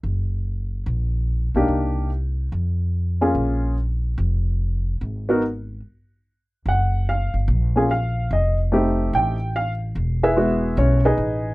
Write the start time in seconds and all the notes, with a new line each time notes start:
0.03 F#1
0.86 A#1
1.54 B1 A#3 D4 D#4 G4
1.68 C2
2.52 F2
3.21 A#3 C#4 F4 G#4
3.35 A#1
4.18 F1
5.01 G#1
5.29 B3 D#4 F#4 A#4
6.66 F#1 F#5
7.09 F5
7.34 G1
7.48 A#1
7.76 A#3 C#4 F4 G#4
7.91 F5
8.31 F1 D#5
8.72 A3 C4 D#4 G4
9.13 A1 G5
9.56 F5
9.95 E1
10.23 E4 G#4 B4 E5
10.36 G#3 B3 E4 F#4
10.77 B1 C#4 C#5
11.05 D#4 G#4 B4 D#5
11.18 A1